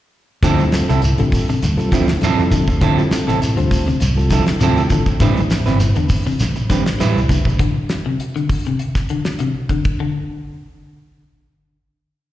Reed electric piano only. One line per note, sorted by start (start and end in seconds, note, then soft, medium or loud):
0.58 0.86 G3 medium
0.58 0.87 C4 medium
0.58 0.86 F4 medium
0.58 0.87 A4 medium
1.18 1.46 G3 medium
1.18 1.46 C4 medium
1.18 1.47 F4 medium
1.18 1.47 A4 medium
1.77 2.06 G3 medium
1.77 2.06 C4 medium
1.77 2.06 F4 medium
1.77 2.06 A4 medium
2.37 2.65 G3 medium
2.37 2.65 C4 medium
2.37 2.65 F4 medium
2.37 2.66 A4 medium
2.98 3.26 G3 medium
2.98 3.26 C4 medium
2.98 3.26 F4 medium
2.98 3.26 A4 medium
3.57 3.85 G3 medium
3.57 3.85 C4 medium
3.57 3.85 F4 medium
3.57 3.85 C5 medium
4.17 4.45 G3 medium
4.17 4.45 C4 medium
4.17 4.45 F4 medium
4.17 4.45 A4 medium
4.77 5.05 G3 medium
4.77 5.05 C4 medium
4.77 5.05 F4 medium
4.77 5.05 A4 medium